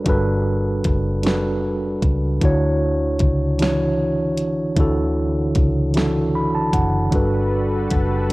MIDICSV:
0, 0, Header, 1, 5, 480
1, 0, Start_track
1, 0, Key_signature, 2, "major"
1, 0, Tempo, 784314
1, 41, Time_signature, 6, 3, 24, 8
1, 5096, End_track
2, 0, Start_track
2, 0, Title_t, "Analog synth pad"
2, 0, Program_c, 0, 89
2, 4364, Note_on_c, 0, 71, 82
2, 4365, Note_on_c, 0, 69, 65
2, 4368, Note_on_c, 0, 55, 72
2, 4368, Note_on_c, 0, 66, 72
2, 5096, Note_off_c, 0, 55, 0
2, 5096, Note_off_c, 0, 66, 0
2, 5096, Note_off_c, 0, 69, 0
2, 5096, Note_off_c, 0, 71, 0
2, 5096, End_track
3, 0, Start_track
3, 0, Title_t, "Tine electric piano"
3, 0, Program_c, 1, 4
3, 0, Control_c, 1, 64, 127
3, 0, Note_on_c, 1, 55, 82
3, 0, Note_on_c, 1, 62, 73
3, 0, Note_on_c, 1, 66, 74
3, 0, Note_on_c, 1, 69, 77
3, 0, Note_on_c, 1, 70, 75
3, 0, Note_on_c, 1, 71, 89
3, 28, Note_off_c, 1, 55, 0
3, 28, Note_on_c, 1, 55, 92
3, 36, Note_off_c, 1, 62, 0
3, 36, Note_on_c, 1, 62, 83
3, 44, Note_off_c, 1, 66, 0
3, 44, Note_on_c, 1, 66, 78
3, 51, Note_off_c, 1, 69, 0
3, 51, Note_on_c, 1, 69, 85
3, 59, Note_off_c, 1, 71, 0
3, 59, Note_on_c, 1, 71, 104
3, 646, Note_off_c, 1, 55, 0
3, 650, Note_off_c, 1, 62, 0
3, 654, Note_off_c, 1, 66, 0
3, 658, Note_off_c, 1, 69, 0
3, 661, Note_off_c, 1, 71, 0
3, 749, Note_on_c, 1, 55, 77
3, 757, Note_on_c, 1, 62, 72
3, 764, Note_on_c, 1, 66, 72
3, 771, Note_on_c, 1, 69, 73
3, 780, Note_on_c, 1, 71, 90
3, 1366, Note_off_c, 1, 55, 0
3, 1370, Note_off_c, 1, 62, 0
3, 1374, Note_off_c, 1, 66, 0
3, 1378, Note_off_c, 1, 69, 0
3, 1382, Note_off_c, 1, 71, 0
3, 1468, Note_on_c, 1, 50, 92
3, 1476, Note_on_c, 1, 62, 84
3, 1484, Note_on_c, 1, 64, 84
3, 1489, Control_c, 1, 64, 0
3, 1491, Note_on_c, 1, 66, 87
3, 1493, Note_off_c, 1, 70, 0
3, 1500, Note_on_c, 1, 73, 104
3, 1611, Control_c, 1, 64, 127
3, 2086, Note_off_c, 1, 50, 0
3, 2090, Note_off_c, 1, 62, 0
3, 2094, Note_off_c, 1, 64, 0
3, 2097, Note_off_c, 1, 66, 0
3, 2102, Note_off_c, 1, 73, 0
3, 2189, Note_on_c, 1, 52, 88
3, 2196, Note_on_c, 1, 62, 73
3, 2203, Note_on_c, 1, 64, 77
3, 2211, Note_on_c, 1, 66, 72
3, 2218, Note_on_c, 1, 73, 87
3, 2806, Note_off_c, 1, 52, 0
3, 2810, Note_off_c, 1, 62, 0
3, 2813, Note_off_c, 1, 64, 0
3, 2817, Note_off_c, 1, 66, 0
3, 2821, Note_off_c, 1, 73, 0
3, 2909, Note_on_c, 1, 50, 95
3, 2917, Note_on_c, 1, 62, 82
3, 2924, Note_on_c, 1, 64, 86
3, 2933, Note_on_c, 1, 66, 79
3, 2940, Note_on_c, 1, 69, 107
3, 3527, Note_off_c, 1, 50, 0
3, 3530, Note_off_c, 1, 62, 0
3, 3534, Note_off_c, 1, 64, 0
3, 3538, Note_off_c, 1, 66, 0
3, 3542, Note_off_c, 1, 69, 0
3, 3629, Note_on_c, 1, 52, 81
3, 3636, Note_on_c, 1, 62, 68
3, 3644, Note_on_c, 1, 64, 73
3, 3649, Note_on_c, 1, 66, 74
3, 3658, Note_on_c, 1, 69, 87
3, 3888, Note_on_c, 1, 83, 70
3, 3996, Note_off_c, 1, 83, 0
3, 4007, Note_on_c, 1, 81, 70
3, 4116, Note_off_c, 1, 81, 0
3, 4123, Note_on_c, 1, 78, 68
3, 4246, Note_off_c, 1, 52, 0
3, 4250, Note_off_c, 1, 62, 0
3, 4254, Note_off_c, 1, 64, 0
3, 4257, Note_off_c, 1, 66, 0
3, 4261, Note_off_c, 1, 69, 0
3, 4345, Note_off_c, 1, 78, 0
3, 4349, Note_on_c, 1, 55, 89
3, 4355, Note_on_c, 1, 62, 81
3, 4364, Note_on_c, 1, 66, 79
3, 4368, Control_c, 1, 64, 0
3, 4372, Note_on_c, 1, 69, 82
3, 4379, Note_on_c, 1, 71, 95
3, 4471, Control_c, 1, 64, 127
3, 4966, Note_off_c, 1, 55, 0
3, 4969, Note_off_c, 1, 62, 0
3, 4974, Note_off_c, 1, 66, 0
3, 4978, Note_off_c, 1, 69, 0
3, 4981, Note_off_c, 1, 71, 0
3, 5071, Note_on_c, 1, 55, 80
3, 5096, Note_off_c, 1, 55, 0
3, 5096, End_track
4, 0, Start_track
4, 0, Title_t, "Fingered electric bass"
4, 0, Program_c, 2, 33
4, 43, Note_on_c, 2, 31, 106
4, 497, Note_off_c, 2, 31, 0
4, 526, Note_on_c, 2, 30, 84
4, 1219, Note_off_c, 2, 30, 0
4, 1244, Note_on_c, 2, 37, 102
4, 1459, Note_off_c, 2, 37, 0
4, 1484, Note_on_c, 2, 38, 111
4, 1938, Note_off_c, 2, 38, 0
4, 1964, Note_on_c, 2, 37, 94
4, 2898, Note_off_c, 2, 37, 0
4, 2922, Note_on_c, 2, 38, 100
4, 3377, Note_off_c, 2, 38, 0
4, 3405, Note_on_c, 2, 37, 87
4, 4099, Note_off_c, 2, 37, 0
4, 4126, Note_on_c, 2, 30, 95
4, 4340, Note_off_c, 2, 30, 0
4, 4365, Note_on_c, 2, 31, 91
4, 4818, Note_off_c, 2, 31, 0
4, 4848, Note_on_c, 2, 30, 83
4, 5096, Note_off_c, 2, 30, 0
4, 5096, End_track
5, 0, Start_track
5, 0, Title_t, "Drums"
5, 36, Note_on_c, 9, 42, 77
5, 38, Note_on_c, 9, 36, 115
5, 97, Note_off_c, 9, 42, 0
5, 99, Note_off_c, 9, 36, 0
5, 516, Note_on_c, 9, 42, 66
5, 521, Note_on_c, 9, 36, 94
5, 578, Note_off_c, 9, 42, 0
5, 582, Note_off_c, 9, 36, 0
5, 756, Note_on_c, 9, 42, 70
5, 776, Note_on_c, 9, 38, 111
5, 817, Note_off_c, 9, 42, 0
5, 837, Note_off_c, 9, 38, 0
5, 1239, Note_on_c, 9, 36, 97
5, 1240, Note_on_c, 9, 42, 77
5, 1300, Note_off_c, 9, 36, 0
5, 1301, Note_off_c, 9, 42, 0
5, 1478, Note_on_c, 9, 36, 108
5, 1478, Note_on_c, 9, 42, 76
5, 1539, Note_off_c, 9, 36, 0
5, 1539, Note_off_c, 9, 42, 0
5, 1954, Note_on_c, 9, 42, 61
5, 1960, Note_on_c, 9, 36, 90
5, 2015, Note_off_c, 9, 42, 0
5, 2021, Note_off_c, 9, 36, 0
5, 2197, Note_on_c, 9, 42, 67
5, 2217, Note_on_c, 9, 38, 123
5, 2258, Note_off_c, 9, 42, 0
5, 2278, Note_off_c, 9, 38, 0
5, 2677, Note_on_c, 9, 42, 76
5, 2738, Note_off_c, 9, 42, 0
5, 2916, Note_on_c, 9, 42, 73
5, 2917, Note_on_c, 9, 36, 115
5, 2977, Note_off_c, 9, 42, 0
5, 2978, Note_off_c, 9, 36, 0
5, 3396, Note_on_c, 9, 42, 61
5, 3400, Note_on_c, 9, 36, 100
5, 3458, Note_off_c, 9, 42, 0
5, 3461, Note_off_c, 9, 36, 0
5, 3634, Note_on_c, 9, 42, 65
5, 3654, Note_on_c, 9, 38, 116
5, 3696, Note_off_c, 9, 42, 0
5, 3716, Note_off_c, 9, 38, 0
5, 4120, Note_on_c, 9, 36, 93
5, 4121, Note_on_c, 9, 42, 79
5, 4181, Note_off_c, 9, 36, 0
5, 4182, Note_off_c, 9, 42, 0
5, 4359, Note_on_c, 9, 42, 70
5, 4360, Note_on_c, 9, 36, 118
5, 4421, Note_off_c, 9, 36, 0
5, 4421, Note_off_c, 9, 42, 0
5, 4838, Note_on_c, 9, 42, 66
5, 4842, Note_on_c, 9, 36, 94
5, 4899, Note_off_c, 9, 42, 0
5, 4904, Note_off_c, 9, 36, 0
5, 5096, End_track
0, 0, End_of_file